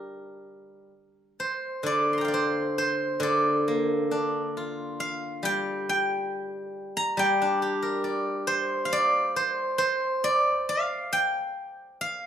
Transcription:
guzheng
Already playing: G3 D4 G4 A#4
1.40 C5
1.83 D3 D5
2.13 C6
2.18 G5 A#5
2.25 D5 F5
2.34 C5
2.78 C5
3.20 D3 D5
3.68 A#3
4.11 D4
4.57 F4
5.00 F5
5.43 G3 G5
5.89 G5
6.97 A#5
7.17 G3 G5
7.42 D4
7.62 G4
7.82 A#4
8.04 D5
8.47 C5
8.85 F5
8.93 D5
9.36 C5
9.78 C5
10.24 D5
10.69 F5
11.13 G5
12.01 F5

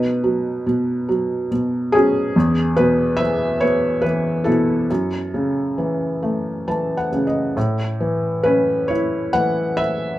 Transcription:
felt piano
Already playing: B2 D#4 B4
0.24 F#3
0.66 B2
1.09 F#3
1.51 B2
1.92 F#3 C#4 G#4
2.36 E2
2.77 B2 B4
3.17 E3 E5
3.61 B3 C#5
4.02 E3 B4
4.44 B2 E4 A4
4.90 F#2
5.34 C#3
5.78 E3
6.23 A3
6.68 E3 A5
6.97 F#5
7.12 C#3
7.27 D#5
7.57 A2
8.00 E3
8.43 C#4 B4
8.88 E4 C#5
9.33 E3 F#5
9.77 E5

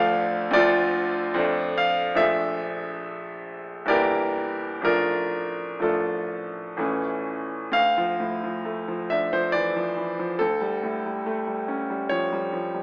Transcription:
grand piano
Already playing: D2 F3 A3 D4 A4 D5 F5
0.51 D2 F3 A3 D4 F4 A4 D5
1.34 F2 F3 A3 D4
1.78 F5
2.15 A#1 F3 A3 D4 E5
3.86 G1 E3 A#3 E4 A#4 D5
3.90 G4
4.81 A1 F3 A3 D4 A#4
4.86 F4
5.80 A1 F3 A3 D4 F4 A4
6.77 A1 E3 A3 C#4
7.72 D2 F5
7.98 F3
8.20 A2
8.44 F3
8.65 A3
8.88 F3
9.10 D4 E5
9.33 F3 C5
9.52 E3 D5
9.76 F3
9.97 E3
10.19 F3
10.39 D2 A4
10.61 G3
10.83 A2
11.06 G3
11.26 A3
11.48 G3
11.68 C#4
11.90 G3
12.09 F3 C#5
12.32 G3
12.53 F3
12.74 G3

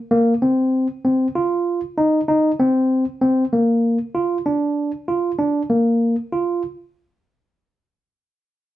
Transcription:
tine electric piano
0.11 A#3
0.42 C4
1.05 C4
1.35 F4
1.98 D#4
2.28 D#4
2.60 C4
3.22 C4
3.53 A#3
4.15 F4
4.46 D4
5.08 F4
5.39 D4
5.70 A#3
6.32 F4

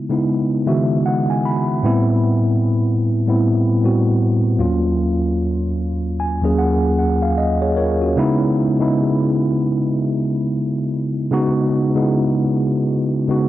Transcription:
tine electric piano
0.09 C#3 G#3 B3 D#4 E4
0.66 C#3 D#3 G#3 B3 F#4 E5
1.06 F#5
1.30 G#5
1.45 B5
1.83 A2 G3 B3 C4 E4
3.27 A2 G3 B3 C4 E4
3.82 A2 G3 B3 C4 F#4
4.58 D#2 F#3 A#3 C#4 F4
6.20 G#5
6.42 D#2 F#3 A#3 C#4 G#4
6.59 F#5
6.99 F#5
7.22 F5
7.38 D#5
7.61 G#4 C#5
7.77 F4 A#4 C#5
8.02 C#4 F#4
8.16 C#3 G#3 B3 D#4 E4
8.79 C#3 G#3 B3 D#4 E4
11.31 C#3 G#3 B3 D#4 F#4
11.95 C#3 G#3 B3 D#4 E4
13.28 C#3 G#3 B3 D#4 F#4

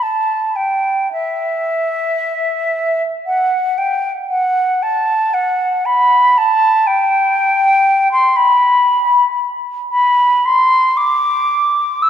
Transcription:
flute
0.03 A5
0.56 G5
1.12 E5
3.26 F#5
3.78 G5
4.30 F#5
4.83 A5
5.34 F#5
5.85 B5
6.38 A5
6.87 G5
8.12 C6
8.36 B5
9.91 B5
10.45 C6
10.97 D6
12.02 E6

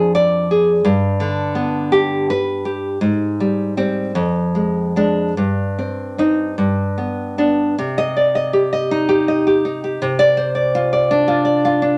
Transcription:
nylon-string guitar
Already playing: F2 F3 D4 G#4
0.15 D5
0.51 G#4
0.85 G2
1.20 D3
1.55 B3
1.92 G4
2.30 B4
2.65 G4
3.01 G#2
3.40 G3
3.77 G3 C4
4.15 F2
4.55 G#3
4.96 G#3 D4
5.37 G2
5.79 C4
6.18 C4 D#4
6.58 G2
6.98 B3
7.38 B3 D4
7.79 C3
7.98 D#5
8.17 D5
8.35 D#5
8.53 G4
8.73 D#5
8.91 D#4
9.09 G4
9.28 D#5
9.47 G4
9.65 D#4
9.84 G4
10.02 C3
10.19 D5
10.37 C5
10.55 D5
10.75 F4
10.93 D5
11.11 D4
11.28 F4
11.45 D5
11.65 F4
11.82 D4

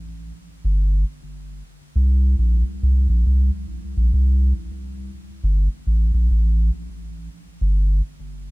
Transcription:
sub bass
0.65 G1
1.96 C2
2.39 A#1
2.83 C2
3.09 A#1
3.26 C2
3.97 A#1
4.13 C2
5.44 G1
5.87 A1
6.14 A#1
6.31 A1
7.61 G1

